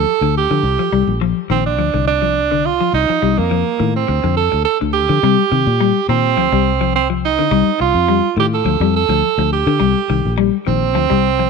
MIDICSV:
0, 0, Header, 1, 6, 480
1, 0, Start_track
1, 0, Tempo, 573066
1, 537, Time_signature, 4, 2, 24, 8
1, 9632, End_track
2, 0, Start_track
2, 0, Title_t, "Alto saxophone"
2, 0, Program_c, 0, 65
2, 0, Note_on_c, 0, 69, 121
2, 305, Note_off_c, 0, 69, 0
2, 314, Note_on_c, 0, 67, 94
2, 992, Note_off_c, 0, 67, 0
2, 1266, Note_on_c, 0, 60, 99
2, 1380, Note_off_c, 0, 60, 0
2, 1392, Note_on_c, 0, 62, 88
2, 1717, Note_off_c, 0, 62, 0
2, 1738, Note_on_c, 0, 62, 105
2, 2226, Note_on_c, 0, 65, 109
2, 2239, Note_off_c, 0, 62, 0
2, 2457, Note_off_c, 0, 65, 0
2, 2462, Note_on_c, 0, 63, 110
2, 2832, Note_on_c, 0, 58, 93
2, 2844, Note_off_c, 0, 63, 0
2, 3309, Note_off_c, 0, 58, 0
2, 3318, Note_on_c, 0, 60, 83
2, 3641, Note_off_c, 0, 60, 0
2, 3658, Note_on_c, 0, 69, 99
2, 3882, Note_off_c, 0, 69, 0
2, 3894, Note_on_c, 0, 69, 105
2, 4003, Note_off_c, 0, 69, 0
2, 4130, Note_on_c, 0, 67, 108
2, 5061, Note_off_c, 0, 67, 0
2, 5101, Note_on_c, 0, 60, 105
2, 5786, Note_off_c, 0, 60, 0
2, 5827, Note_on_c, 0, 60, 94
2, 5933, Note_off_c, 0, 60, 0
2, 6073, Note_on_c, 0, 63, 97
2, 6512, Note_off_c, 0, 63, 0
2, 6542, Note_on_c, 0, 65, 108
2, 6986, Note_off_c, 0, 65, 0
2, 7033, Note_on_c, 0, 67, 103
2, 7087, Note_off_c, 0, 67, 0
2, 7153, Note_on_c, 0, 69, 92
2, 7477, Note_off_c, 0, 69, 0
2, 7506, Note_on_c, 0, 69, 107
2, 7948, Note_off_c, 0, 69, 0
2, 7980, Note_on_c, 0, 67, 98
2, 8682, Note_off_c, 0, 67, 0
2, 8940, Note_on_c, 0, 60, 111
2, 9632, Note_off_c, 0, 60, 0
2, 9632, End_track
3, 0, Start_track
3, 0, Title_t, "Clean electric guitar"
3, 0, Program_c, 1, 27
3, 0, Note_on_c, 1, 53, 78
3, 98, Note_off_c, 1, 53, 0
3, 187, Note_on_c, 1, 50, 73
3, 337, Note_off_c, 1, 50, 0
3, 426, Note_on_c, 1, 53, 70
3, 496, Note_off_c, 1, 53, 0
3, 663, Note_on_c, 1, 53, 71
3, 734, Note_off_c, 1, 53, 0
3, 775, Note_on_c, 1, 55, 77
3, 926, Note_off_c, 1, 55, 0
3, 1017, Note_on_c, 1, 53, 88
3, 1168, Note_off_c, 1, 53, 0
3, 1255, Note_on_c, 1, 51, 71
3, 1407, Note_off_c, 1, 51, 0
3, 1495, Note_on_c, 1, 53, 81
3, 1576, Note_off_c, 1, 53, 0
3, 1622, Note_on_c, 1, 50, 69
3, 1774, Note_off_c, 1, 50, 0
3, 1860, Note_on_c, 1, 53, 77
3, 2012, Note_off_c, 1, 53, 0
3, 2106, Note_on_c, 1, 50, 72
3, 2256, Note_off_c, 1, 50, 0
3, 2349, Note_on_c, 1, 53, 67
3, 2419, Note_off_c, 1, 53, 0
3, 2590, Note_on_c, 1, 53, 75
3, 2660, Note_off_c, 1, 53, 0
3, 2699, Note_on_c, 1, 55, 75
3, 2850, Note_off_c, 1, 55, 0
3, 2941, Note_on_c, 1, 53, 89
3, 3091, Note_off_c, 1, 53, 0
3, 3178, Note_on_c, 1, 51, 76
3, 3329, Note_off_c, 1, 51, 0
3, 3549, Note_on_c, 1, 50, 64
3, 3699, Note_off_c, 1, 50, 0
3, 4030, Note_on_c, 1, 50, 76
3, 4180, Note_off_c, 1, 50, 0
3, 4265, Note_on_c, 1, 53, 71
3, 4336, Note_off_c, 1, 53, 0
3, 4385, Note_on_c, 1, 55, 98
3, 4534, Note_off_c, 1, 55, 0
3, 4620, Note_on_c, 1, 51, 72
3, 4771, Note_off_c, 1, 51, 0
3, 4862, Note_on_c, 1, 55, 86
3, 5012, Note_off_c, 1, 55, 0
3, 5103, Note_on_c, 1, 51, 72
3, 5252, Note_off_c, 1, 51, 0
3, 5339, Note_on_c, 1, 53, 89
3, 5418, Note_off_c, 1, 53, 0
3, 5465, Note_on_c, 1, 55, 74
3, 5616, Note_off_c, 1, 55, 0
3, 5703, Note_on_c, 1, 53, 86
3, 5854, Note_off_c, 1, 53, 0
3, 5946, Note_on_c, 1, 53, 82
3, 6096, Note_off_c, 1, 53, 0
3, 6188, Note_on_c, 1, 50, 75
3, 6258, Note_off_c, 1, 50, 0
3, 6292, Note_on_c, 1, 55, 99
3, 6445, Note_off_c, 1, 55, 0
3, 6771, Note_on_c, 1, 55, 91
3, 6924, Note_off_c, 1, 55, 0
3, 7015, Note_on_c, 1, 51, 77
3, 7167, Note_off_c, 1, 51, 0
3, 7250, Note_on_c, 1, 53, 95
3, 7332, Note_off_c, 1, 53, 0
3, 7382, Note_on_c, 1, 55, 74
3, 7533, Note_off_c, 1, 55, 0
3, 7618, Note_on_c, 1, 53, 84
3, 7771, Note_off_c, 1, 53, 0
3, 7862, Note_on_c, 1, 53, 78
3, 8014, Note_off_c, 1, 53, 0
3, 8102, Note_on_c, 1, 50, 78
3, 8174, Note_off_c, 1, 50, 0
3, 8205, Note_on_c, 1, 55, 95
3, 8360, Note_off_c, 1, 55, 0
3, 8457, Note_on_c, 1, 51, 82
3, 8608, Note_off_c, 1, 51, 0
3, 8691, Note_on_c, 1, 55, 96
3, 8844, Note_off_c, 1, 55, 0
3, 8934, Note_on_c, 1, 51, 76
3, 9086, Note_off_c, 1, 51, 0
3, 9172, Note_on_c, 1, 53, 97
3, 9253, Note_off_c, 1, 53, 0
3, 9296, Note_on_c, 1, 55, 74
3, 9450, Note_off_c, 1, 55, 0
3, 9543, Note_on_c, 1, 53, 76
3, 9632, Note_off_c, 1, 53, 0
3, 9632, End_track
4, 0, Start_track
4, 0, Title_t, "Fingered electric bass"
4, 0, Program_c, 2, 33
4, 178, Note_on_c, 2, 38, 90
4, 385, Note_off_c, 2, 38, 0
4, 424, Note_on_c, 2, 50, 96
4, 520, Note_off_c, 2, 50, 0
4, 528, Note_on_c, 2, 36, 108
4, 640, Note_off_c, 2, 36, 0
4, 773, Note_on_c, 2, 36, 93
4, 883, Note_off_c, 2, 36, 0
4, 899, Note_on_c, 2, 34, 92
4, 1106, Note_off_c, 2, 34, 0
4, 1254, Note_on_c, 2, 34, 98
4, 1496, Note_off_c, 2, 34, 0
4, 1496, Note_on_c, 2, 38, 98
4, 1605, Note_off_c, 2, 38, 0
4, 1625, Note_on_c, 2, 36, 95
4, 2336, Note_off_c, 2, 36, 0
4, 2457, Note_on_c, 2, 36, 99
4, 2565, Note_off_c, 2, 36, 0
4, 2701, Note_on_c, 2, 36, 87
4, 2808, Note_off_c, 2, 36, 0
4, 2833, Note_on_c, 2, 41, 97
4, 3034, Note_off_c, 2, 41, 0
4, 3182, Note_on_c, 2, 45, 92
4, 3385, Note_off_c, 2, 45, 0
4, 3424, Note_on_c, 2, 38, 94
4, 3530, Note_off_c, 2, 38, 0
4, 3551, Note_on_c, 2, 41, 105
4, 3753, Note_off_c, 2, 41, 0
4, 3795, Note_on_c, 2, 38, 88
4, 3888, Note_off_c, 2, 38, 0
4, 4036, Note_on_c, 2, 38, 89
4, 4236, Note_off_c, 2, 38, 0
4, 4265, Note_on_c, 2, 50, 95
4, 4362, Note_off_c, 2, 50, 0
4, 4380, Note_on_c, 2, 48, 98
4, 4488, Note_off_c, 2, 48, 0
4, 4620, Note_on_c, 2, 48, 95
4, 4727, Note_off_c, 2, 48, 0
4, 4747, Note_on_c, 2, 46, 110
4, 4951, Note_off_c, 2, 46, 0
4, 5097, Note_on_c, 2, 46, 98
4, 5336, Note_off_c, 2, 46, 0
4, 5336, Note_on_c, 2, 38, 95
4, 5445, Note_off_c, 2, 38, 0
4, 5464, Note_on_c, 2, 36, 102
4, 6174, Note_off_c, 2, 36, 0
4, 6292, Note_on_c, 2, 36, 112
4, 6403, Note_off_c, 2, 36, 0
4, 6535, Note_on_c, 2, 36, 92
4, 6644, Note_off_c, 2, 36, 0
4, 6655, Note_on_c, 2, 41, 95
4, 6864, Note_off_c, 2, 41, 0
4, 7007, Note_on_c, 2, 45, 102
4, 7216, Note_off_c, 2, 45, 0
4, 7243, Note_on_c, 2, 38, 95
4, 7357, Note_off_c, 2, 38, 0
4, 7372, Note_on_c, 2, 41, 103
4, 7582, Note_off_c, 2, 41, 0
4, 7611, Note_on_c, 2, 38, 100
4, 7713, Note_off_c, 2, 38, 0
4, 7854, Note_on_c, 2, 38, 100
4, 8063, Note_off_c, 2, 38, 0
4, 8096, Note_on_c, 2, 50, 97
4, 8196, Note_off_c, 2, 50, 0
4, 8211, Note_on_c, 2, 36, 111
4, 8322, Note_off_c, 2, 36, 0
4, 8456, Note_on_c, 2, 36, 90
4, 8565, Note_off_c, 2, 36, 0
4, 8586, Note_on_c, 2, 34, 100
4, 8790, Note_off_c, 2, 34, 0
4, 8942, Note_on_c, 2, 34, 104
4, 9179, Note_off_c, 2, 34, 0
4, 9179, Note_on_c, 2, 38, 101
4, 9287, Note_off_c, 2, 38, 0
4, 9308, Note_on_c, 2, 36, 101
4, 9632, Note_off_c, 2, 36, 0
4, 9632, End_track
5, 0, Start_track
5, 0, Title_t, "Muted clean electric guitar strokes"
5, 3421, Note_on_c, 9, 29, 86
5, 3504, Note_off_c, 9, 29, 0
5, 3785, Note_on_c, 9, 29, 73
5, 3868, Note_off_c, 9, 29, 0
5, 6531, Note_on_c, 9, 29, 70
5, 6615, Note_off_c, 9, 29, 0
5, 9632, End_track
6, 0, Start_track
6, 0, Title_t, "Muted fingered electric bass strokes"
6, 2591, Note_on_c, 9, 29, 35
6, 2675, Note_off_c, 9, 29, 0
6, 6423, Note_on_c, 9, 29, 39
6, 6507, Note_off_c, 9, 29, 0
6, 9632, End_track
0, 0, End_of_file